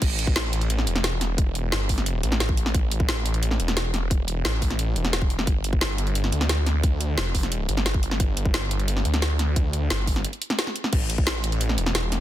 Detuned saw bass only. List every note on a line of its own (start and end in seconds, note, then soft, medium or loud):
0.02 0.86 A1 loud
0.87 1.71 E1 medium
1.72 2.22 G1 loud
2.23 2.73 A1 loud
2.74 3.58 A1 loud
3.60 4.44 E1 loud
4.45 4.95 A1 loud
4.96 5.46 E1 loud
5.47 6.31 G1 loud
6.32 7.16 D2 medium
7.18 7.67 F1 loud
7.69 8.19 G1 loud
8.20 9.04 G1 loud
9.05 9.89 D2 loud
9.90 10.24 G1 loud
10.93 11.77 A1 loud
11.78 12.20 E1 loud